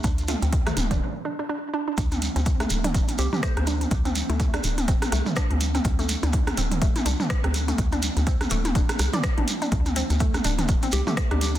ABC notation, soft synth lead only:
X:1
M:4/4
L:1/16
Q:"Swing 16ths" 1/4=124
K:Cmix
V:1 name="Soft synth lead"
z16 | z8 z2 G G c c z2 | z16 | z16 |
z16 | z8 z2 G G z G G z |]